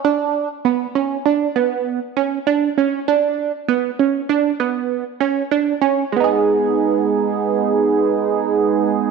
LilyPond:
\new Staff \with { instrumentName = "Synth arpeggio sound" } { \time 5/4 \key b \mixolydian \tempo 4 = 99 d'4 b8 cis'8 d'8 b4 cis'8 d'8 cis'8 | d'4 b8 cis'8 d'8 b4 cis'8 d'8 cis'8 | <gis b dis' gis'>1~ <gis b dis' gis'>4 | }